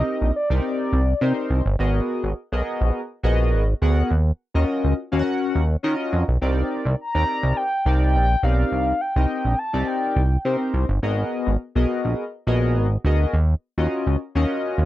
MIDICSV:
0, 0, Header, 1, 4, 480
1, 0, Start_track
1, 0, Tempo, 576923
1, 1497, Time_signature, 4, 2, 24, 8
1, 12356, End_track
2, 0, Start_track
2, 0, Title_t, "Soft synth lead"
2, 0, Program_c, 0, 80
2, 0, Note_on_c, 0, 75, 106
2, 295, Note_off_c, 0, 75, 0
2, 300, Note_on_c, 0, 74, 86
2, 408, Note_off_c, 0, 74, 0
2, 545, Note_on_c, 0, 74, 89
2, 1228, Note_off_c, 0, 74, 0
2, 5828, Note_on_c, 0, 82, 127
2, 6297, Note_on_c, 0, 79, 114
2, 6309, Note_off_c, 0, 82, 0
2, 6661, Note_off_c, 0, 79, 0
2, 6666, Note_on_c, 0, 79, 114
2, 7021, Note_on_c, 0, 77, 108
2, 7034, Note_off_c, 0, 79, 0
2, 7497, Note_on_c, 0, 79, 104
2, 7510, Note_off_c, 0, 77, 0
2, 7976, Note_on_c, 0, 81, 107
2, 7988, Note_off_c, 0, 79, 0
2, 8215, Note_on_c, 0, 79, 88
2, 8227, Note_off_c, 0, 81, 0
2, 8936, Note_off_c, 0, 79, 0
2, 12356, End_track
3, 0, Start_track
3, 0, Title_t, "Analog polysynth"
3, 0, Program_c, 1, 90
3, 0, Note_on_c, 1, 60, 79
3, 0, Note_on_c, 1, 63, 71
3, 0, Note_on_c, 1, 67, 67
3, 0, Note_on_c, 1, 70, 71
3, 0, Note_on_c, 1, 75, 83
3, 260, Note_off_c, 1, 60, 0
3, 261, Note_off_c, 1, 63, 0
3, 261, Note_off_c, 1, 67, 0
3, 262, Note_off_c, 1, 70, 0
3, 263, Note_off_c, 1, 75, 0
3, 417, Note_on_c, 1, 60, 88
3, 418, Note_on_c, 1, 63, 83
3, 421, Note_on_c, 1, 67, 87
3, 422, Note_on_c, 1, 70, 83
3, 423, Note_on_c, 1, 74, 100
3, 822, Note_off_c, 1, 60, 0
3, 822, Note_off_c, 1, 63, 0
3, 823, Note_off_c, 1, 67, 0
3, 824, Note_off_c, 1, 70, 0
3, 824, Note_off_c, 1, 74, 0
3, 1009, Note_on_c, 1, 60, 92
3, 1012, Note_on_c, 1, 63, 87
3, 1012, Note_on_c, 1, 67, 85
3, 1016, Note_on_c, 1, 70, 86
3, 1017, Note_on_c, 1, 72, 98
3, 1342, Note_off_c, 1, 60, 0
3, 1343, Note_off_c, 1, 63, 0
3, 1344, Note_off_c, 1, 67, 0
3, 1346, Note_off_c, 1, 70, 0
3, 1346, Note_off_c, 1, 72, 0
3, 1490, Note_on_c, 1, 59, 89
3, 1492, Note_on_c, 1, 66, 80
3, 1494, Note_on_c, 1, 68, 84
3, 1496, Note_on_c, 1, 75, 99
3, 1497, Note_on_c, 1, 70, 80
3, 1903, Note_off_c, 1, 59, 0
3, 1904, Note_off_c, 1, 66, 0
3, 1905, Note_off_c, 1, 68, 0
3, 1906, Note_off_c, 1, 70, 0
3, 1906, Note_off_c, 1, 75, 0
3, 2097, Note_on_c, 1, 59, 87
3, 2099, Note_on_c, 1, 66, 84
3, 2100, Note_on_c, 1, 68, 88
3, 2102, Note_on_c, 1, 70, 83
3, 2103, Note_on_c, 1, 75, 98
3, 2501, Note_off_c, 1, 59, 0
3, 2502, Note_off_c, 1, 66, 0
3, 2503, Note_off_c, 1, 68, 0
3, 2504, Note_off_c, 1, 70, 0
3, 2504, Note_off_c, 1, 75, 0
3, 2689, Note_on_c, 1, 59, 103
3, 2690, Note_on_c, 1, 66, 104
3, 2691, Note_on_c, 1, 68, 102
3, 2692, Note_on_c, 1, 70, 101
3, 2694, Note_on_c, 1, 75, 120
3, 3022, Note_off_c, 1, 59, 0
3, 3023, Note_off_c, 1, 66, 0
3, 3023, Note_off_c, 1, 68, 0
3, 3024, Note_off_c, 1, 70, 0
3, 3025, Note_off_c, 1, 75, 0
3, 3174, Note_on_c, 1, 59, 97
3, 3176, Note_on_c, 1, 66, 90
3, 3176, Note_on_c, 1, 68, 93
3, 3179, Note_on_c, 1, 70, 88
3, 3180, Note_on_c, 1, 78, 109
3, 3416, Note_off_c, 1, 59, 0
3, 3416, Note_off_c, 1, 66, 0
3, 3416, Note_off_c, 1, 68, 0
3, 3418, Note_off_c, 1, 70, 0
3, 3419, Note_off_c, 1, 78, 0
3, 3780, Note_on_c, 1, 65, 84
3, 3781, Note_on_c, 1, 61, 90
3, 3784, Note_on_c, 1, 66, 83
3, 3785, Note_on_c, 1, 70, 88
3, 3786, Note_on_c, 1, 75, 112
3, 4101, Note_off_c, 1, 65, 0
3, 4102, Note_off_c, 1, 61, 0
3, 4103, Note_off_c, 1, 66, 0
3, 4103, Note_off_c, 1, 70, 0
3, 4104, Note_off_c, 1, 75, 0
3, 4257, Note_on_c, 1, 61, 112
3, 4259, Note_on_c, 1, 77, 95
3, 4262, Note_on_c, 1, 66, 101
3, 4264, Note_on_c, 1, 70, 99
3, 4265, Note_off_c, 1, 77, 0
3, 4265, Note_on_c, 1, 77, 99
3, 4315, Note_off_c, 1, 77, 0
3, 4317, Note_on_c, 1, 78, 127
3, 4661, Note_off_c, 1, 61, 0
3, 4664, Note_off_c, 1, 66, 0
3, 4665, Note_off_c, 1, 70, 0
3, 4691, Note_off_c, 1, 78, 0
3, 4850, Note_on_c, 1, 61, 98
3, 4853, Note_on_c, 1, 65, 96
3, 4853, Note_on_c, 1, 66, 94
3, 4856, Note_on_c, 1, 70, 94
3, 4857, Note_on_c, 1, 75, 116
3, 5183, Note_off_c, 1, 61, 0
3, 5184, Note_off_c, 1, 65, 0
3, 5184, Note_off_c, 1, 66, 0
3, 5186, Note_off_c, 1, 70, 0
3, 5186, Note_off_c, 1, 75, 0
3, 5336, Note_on_c, 1, 60, 86
3, 5338, Note_on_c, 1, 63, 77
3, 5339, Note_on_c, 1, 67, 89
3, 5340, Note_on_c, 1, 70, 77
3, 5342, Note_on_c, 1, 74, 100
3, 5746, Note_off_c, 1, 60, 0
3, 5747, Note_off_c, 1, 63, 0
3, 5748, Note_off_c, 1, 67, 0
3, 5748, Note_off_c, 1, 70, 0
3, 5749, Note_off_c, 1, 74, 0
3, 5942, Note_on_c, 1, 60, 78
3, 5942, Note_on_c, 1, 63, 64
3, 5945, Note_on_c, 1, 67, 73
3, 5947, Note_on_c, 1, 70, 65
3, 5947, Note_on_c, 1, 74, 90
3, 6344, Note_off_c, 1, 60, 0
3, 6344, Note_off_c, 1, 63, 0
3, 6345, Note_off_c, 1, 67, 0
3, 6346, Note_off_c, 1, 70, 0
3, 6346, Note_off_c, 1, 74, 0
3, 6536, Note_on_c, 1, 60, 95
3, 6536, Note_on_c, 1, 63, 82
3, 6540, Note_on_c, 1, 67, 82
3, 6540, Note_on_c, 1, 70, 81
3, 6542, Note_on_c, 1, 74, 103
3, 6865, Note_off_c, 1, 60, 0
3, 6865, Note_off_c, 1, 63, 0
3, 6867, Note_off_c, 1, 70, 0
3, 6868, Note_off_c, 1, 67, 0
3, 6868, Note_off_c, 1, 74, 0
3, 7016, Note_on_c, 1, 60, 79
3, 7018, Note_on_c, 1, 63, 77
3, 7019, Note_on_c, 1, 67, 76
3, 7019, Note_on_c, 1, 70, 74
3, 7021, Note_on_c, 1, 74, 86
3, 7426, Note_off_c, 1, 60, 0
3, 7427, Note_off_c, 1, 63, 0
3, 7428, Note_off_c, 1, 67, 0
3, 7428, Note_off_c, 1, 70, 0
3, 7429, Note_off_c, 1, 74, 0
3, 7621, Note_on_c, 1, 60, 73
3, 7623, Note_on_c, 1, 63, 70
3, 7623, Note_on_c, 1, 67, 72
3, 7626, Note_on_c, 1, 70, 74
3, 7628, Note_on_c, 1, 75, 87
3, 7942, Note_off_c, 1, 60, 0
3, 7943, Note_off_c, 1, 63, 0
3, 7943, Note_off_c, 1, 67, 0
3, 7944, Note_off_c, 1, 70, 0
3, 7945, Note_off_c, 1, 75, 0
3, 8096, Note_on_c, 1, 60, 86
3, 8097, Note_on_c, 1, 63, 81
3, 8100, Note_on_c, 1, 67, 89
3, 8101, Note_on_c, 1, 70, 82
3, 8101, Note_on_c, 1, 74, 105
3, 8501, Note_off_c, 1, 60, 0
3, 8501, Note_off_c, 1, 63, 0
3, 8503, Note_off_c, 1, 67, 0
3, 8503, Note_off_c, 1, 70, 0
3, 8503, Note_off_c, 1, 74, 0
3, 8694, Note_on_c, 1, 60, 94
3, 8696, Note_on_c, 1, 63, 77
3, 8698, Note_on_c, 1, 67, 77
3, 8698, Note_on_c, 1, 70, 82
3, 8702, Note_on_c, 1, 72, 95
3, 9025, Note_off_c, 1, 60, 0
3, 9025, Note_off_c, 1, 63, 0
3, 9027, Note_off_c, 1, 67, 0
3, 9027, Note_off_c, 1, 70, 0
3, 9029, Note_off_c, 1, 72, 0
3, 9173, Note_on_c, 1, 59, 88
3, 9175, Note_on_c, 1, 66, 87
3, 9177, Note_on_c, 1, 70, 89
3, 9179, Note_on_c, 1, 68, 77
3, 9179, Note_on_c, 1, 75, 99
3, 9585, Note_off_c, 1, 59, 0
3, 9586, Note_off_c, 1, 66, 0
3, 9587, Note_off_c, 1, 68, 0
3, 9587, Note_off_c, 1, 70, 0
3, 9588, Note_off_c, 1, 75, 0
3, 9778, Note_on_c, 1, 59, 87
3, 9780, Note_on_c, 1, 68, 83
3, 9781, Note_on_c, 1, 66, 81
3, 9783, Note_on_c, 1, 70, 87
3, 9785, Note_on_c, 1, 75, 106
3, 10182, Note_off_c, 1, 59, 0
3, 10183, Note_off_c, 1, 66, 0
3, 10183, Note_off_c, 1, 68, 0
3, 10184, Note_off_c, 1, 70, 0
3, 10185, Note_off_c, 1, 75, 0
3, 10372, Note_on_c, 1, 59, 108
3, 10375, Note_on_c, 1, 66, 101
3, 10376, Note_on_c, 1, 68, 102
3, 10378, Note_on_c, 1, 70, 104
3, 10381, Note_on_c, 1, 75, 113
3, 10704, Note_off_c, 1, 59, 0
3, 10705, Note_off_c, 1, 66, 0
3, 10706, Note_off_c, 1, 68, 0
3, 10707, Note_off_c, 1, 70, 0
3, 10708, Note_off_c, 1, 75, 0
3, 10855, Note_on_c, 1, 59, 100
3, 10857, Note_on_c, 1, 66, 84
3, 10860, Note_on_c, 1, 68, 86
3, 10863, Note_on_c, 1, 70, 85
3, 10863, Note_on_c, 1, 75, 111
3, 11096, Note_off_c, 1, 59, 0
3, 11097, Note_off_c, 1, 66, 0
3, 11099, Note_off_c, 1, 68, 0
3, 11100, Note_off_c, 1, 70, 0
3, 11100, Note_off_c, 1, 75, 0
3, 11462, Note_on_c, 1, 61, 89
3, 11463, Note_on_c, 1, 65, 88
3, 11464, Note_on_c, 1, 66, 78
3, 11466, Note_on_c, 1, 70, 82
3, 11468, Note_on_c, 1, 75, 102
3, 11782, Note_off_c, 1, 61, 0
3, 11783, Note_off_c, 1, 65, 0
3, 11783, Note_off_c, 1, 66, 0
3, 11784, Note_off_c, 1, 70, 0
3, 11785, Note_off_c, 1, 75, 0
3, 11940, Note_on_c, 1, 61, 117
3, 11942, Note_on_c, 1, 65, 95
3, 11943, Note_on_c, 1, 66, 95
3, 11946, Note_on_c, 1, 70, 93
3, 11947, Note_on_c, 1, 75, 119
3, 12343, Note_off_c, 1, 61, 0
3, 12344, Note_off_c, 1, 65, 0
3, 12344, Note_off_c, 1, 66, 0
3, 12346, Note_off_c, 1, 70, 0
3, 12346, Note_off_c, 1, 75, 0
3, 12356, End_track
4, 0, Start_track
4, 0, Title_t, "Analog synth bass"
4, 0, Program_c, 2, 38
4, 179, Note_on_c, 2, 34, 79
4, 264, Note_off_c, 2, 34, 0
4, 417, Note_on_c, 2, 36, 102
4, 503, Note_off_c, 2, 36, 0
4, 770, Note_on_c, 2, 36, 98
4, 950, Note_off_c, 2, 36, 0
4, 1009, Note_on_c, 2, 48, 118
4, 1106, Note_off_c, 2, 48, 0
4, 1249, Note_on_c, 2, 36, 95
4, 1346, Note_off_c, 2, 36, 0
4, 1378, Note_on_c, 2, 31, 107
4, 1464, Note_off_c, 2, 31, 0
4, 1490, Note_on_c, 2, 32, 104
4, 1669, Note_off_c, 2, 32, 0
4, 1859, Note_on_c, 2, 32, 100
4, 1944, Note_off_c, 2, 32, 0
4, 2098, Note_on_c, 2, 35, 85
4, 2183, Note_off_c, 2, 35, 0
4, 2338, Note_on_c, 2, 34, 98
4, 2424, Note_off_c, 2, 34, 0
4, 2693, Note_on_c, 2, 34, 102
4, 2935, Note_on_c, 2, 32, 102
4, 2948, Note_off_c, 2, 34, 0
4, 3113, Note_off_c, 2, 32, 0
4, 3176, Note_on_c, 2, 38, 102
4, 3354, Note_off_c, 2, 38, 0
4, 3416, Note_on_c, 2, 39, 102
4, 3593, Note_off_c, 2, 39, 0
4, 3785, Note_on_c, 2, 39, 102
4, 3868, Note_off_c, 2, 39, 0
4, 4025, Note_on_c, 2, 37, 87
4, 4108, Note_off_c, 2, 37, 0
4, 4263, Note_on_c, 2, 39, 92
4, 4347, Note_off_c, 2, 39, 0
4, 4620, Note_on_c, 2, 39, 97
4, 4796, Note_off_c, 2, 39, 0
4, 4860, Note_on_c, 2, 51, 110
4, 4953, Note_off_c, 2, 51, 0
4, 5099, Note_on_c, 2, 41, 97
4, 5192, Note_off_c, 2, 41, 0
4, 5227, Note_on_c, 2, 35, 82
4, 5309, Note_off_c, 2, 35, 0
4, 5341, Note_on_c, 2, 36, 107
4, 5517, Note_off_c, 2, 36, 0
4, 5703, Note_on_c, 2, 36, 107
4, 5787, Note_off_c, 2, 36, 0
4, 5948, Note_on_c, 2, 39, 91
4, 6030, Note_off_c, 2, 39, 0
4, 6184, Note_on_c, 2, 36, 104
4, 6268, Note_off_c, 2, 36, 0
4, 6536, Note_on_c, 2, 36, 102
4, 6778, Note_on_c, 2, 34, 111
4, 6790, Note_off_c, 2, 36, 0
4, 6954, Note_off_c, 2, 34, 0
4, 7014, Note_on_c, 2, 35, 108
4, 7192, Note_off_c, 2, 35, 0
4, 7253, Note_on_c, 2, 36, 101
4, 7432, Note_off_c, 2, 36, 0
4, 7622, Note_on_c, 2, 36, 114
4, 7706, Note_off_c, 2, 36, 0
4, 7861, Note_on_c, 2, 34, 90
4, 7945, Note_off_c, 2, 34, 0
4, 8101, Note_on_c, 2, 36, 94
4, 8186, Note_off_c, 2, 36, 0
4, 8455, Note_on_c, 2, 36, 100
4, 8633, Note_off_c, 2, 36, 0
4, 8695, Note_on_c, 2, 48, 114
4, 8789, Note_off_c, 2, 48, 0
4, 8934, Note_on_c, 2, 36, 104
4, 9029, Note_off_c, 2, 36, 0
4, 9061, Note_on_c, 2, 31, 104
4, 9145, Note_off_c, 2, 31, 0
4, 9174, Note_on_c, 2, 32, 109
4, 9352, Note_off_c, 2, 32, 0
4, 9541, Note_on_c, 2, 32, 101
4, 9626, Note_off_c, 2, 32, 0
4, 9781, Note_on_c, 2, 35, 95
4, 9865, Note_off_c, 2, 35, 0
4, 10023, Note_on_c, 2, 34, 98
4, 10107, Note_off_c, 2, 34, 0
4, 10374, Note_on_c, 2, 34, 99
4, 10615, Note_on_c, 2, 32, 101
4, 10628, Note_off_c, 2, 34, 0
4, 10793, Note_off_c, 2, 32, 0
4, 10853, Note_on_c, 2, 38, 90
4, 11032, Note_off_c, 2, 38, 0
4, 11094, Note_on_c, 2, 39, 114
4, 11272, Note_off_c, 2, 39, 0
4, 11462, Note_on_c, 2, 39, 99
4, 11546, Note_off_c, 2, 39, 0
4, 11703, Note_on_c, 2, 37, 94
4, 11787, Note_off_c, 2, 37, 0
4, 11944, Note_on_c, 2, 39, 94
4, 12027, Note_off_c, 2, 39, 0
4, 12298, Note_on_c, 2, 39, 101
4, 12356, Note_off_c, 2, 39, 0
4, 12356, End_track
0, 0, End_of_file